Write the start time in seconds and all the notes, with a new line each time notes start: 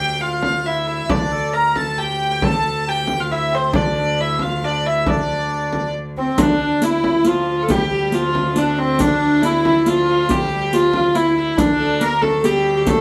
Already playing: D2 G4 G5
0.14 G4
0.21 F4 F5
0.43 frame drum
0.66 E4 E5
0.87 E4 E5
1.09 D2 D4 D5, frame drum
1.16 D4
1.23 D4
1.31 A4, frame drum
1.54 A#4 A#5
1.76 A4 A5, frame drum
1.98 G4 G5, frame drum
2.31 G5
2.42 A4 A5, frame drum
2.64 frame drum
2.87 G4 G5
3.07 frame drum
3.20 F4 F5
3.30 E4 E5, frame drum
3.51 C4 C5
3.73 D4 D5, frame drum
3.96 D4, frame drum
4.20 E4 E5
4.39 F4 F5, frame drum
4.62 D4 D5, frame drum
4.85 E4 E5
5.06 D4 D5, frame drum
5.73 frame drum
6.17 C4, frame drum
6.38 D2 D4, riq, frame drum
6.61 D4, frame drum
6.82 E4, riq
7.04 frame drum
7.25 F3 F4, riq, frame drum
7.63 A4
7.68 G3 G4, riq, frame drum
7.85 G3
7.91 G4, frame drum
7.99 G3
8.12 F3 F4, riq
8.35 frame drum
8.55 D4, riq, frame drum
8.77 C4
8.99 D4, riq, frame drum
9.22 frame drum
9.42 E4, riq
9.65 E4, frame drum
9.86 F3 F4, riq, frame drum
10.07 F4
10.29 G3 G4, riq, frame drum
10.51 G3
10.66 G3
10.73 F3 F4, riq
10.94 F4, frame drum
11.15 E4, riq
11.36 E4, frame drum
11.57 D2 D4, riq, frame drum
11.79 A4, frame drum
12.00 A#3 A#4, riq
12.22 A3 A4, frame drum
12.43 G3 G4, riq, frame drum
12.76 G3 G4
12.86 A3 A4, riq, frame drum